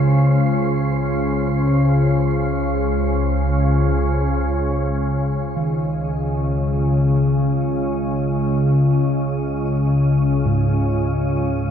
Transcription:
Already playing: synth drone C#2 C#3, kettle gongs E4, synth texture C5
4.94 synth drone C#2 C#3, synth texture D#5
5.57 kettle gongs D#3
10.45 kettle gongs G#2

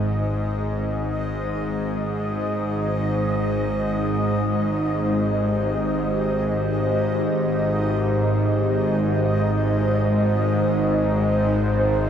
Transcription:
Already playing: synth drone G#1 G#2, analog synth pad D#4 G#4 C5, synth texture D#5
4.45 analog synth pad G4
11.25 synth texture C5

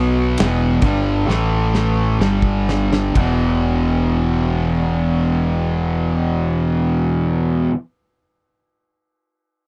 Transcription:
Already playing: fingered electric bass B1, distorted electric guitar B2 F#3 B3
0.38 fingered electric bass E1, distorted electric guitar E2 B2 E3, snare, ride
0.82 fingered electric bass G1, distorted electric guitar G2 D3 G3, kick, ride
1.26 fingered electric bass A1, distorted electric guitar A2 E3 A3, snare
1.75 snare
2.19 fingered electric bass G1, distorted electric guitar G2 D3 G3, snare
2.42 kick
2.69 snare
2.93 snare
3.15 fingered electric bass E1, distorted electric guitar E2 B2 E3, kick, crash

